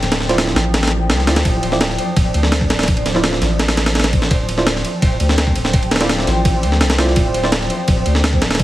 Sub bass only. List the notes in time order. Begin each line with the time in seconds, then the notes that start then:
0.02 D1
0.56 A1
1.09 C2
1.27 D2
1.45 D1
2.17 D1
2.34 D2
2.70 D1
2.88 D1
3.42 A1
4.31 D1
5.02 D1
5.20 D2
5.56 D1
5.74 D1
6.28 A1
6.64 D2
6.81 C2
7.16 D1
7.88 D1
8.06 D2
8.42 D1
8.60 D1